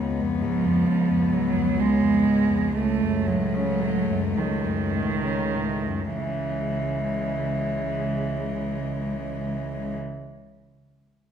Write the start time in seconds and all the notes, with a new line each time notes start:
Already playing: C#2
0.00 C#2 B3
0.20 F2
0.43 G#2 F3
0.67 F2
0.88 C#2
1.10 F2
1.31 G#2 F#3
1.54 F2
1.78 C#2 G#3
2.01 F2
2.25 G#2
2.49 F2
2.75 C#2 A3
3.01 F#2
3.27 A2 F#3
3.54 C#3
3.81 A2
4.08 F#2
4.35 C#2 D#3
4.64 F#2
4.93 A2
5.23 C#3
5.55 A2
5.86 F#2
6.14 C#2 C#3 E3 G#3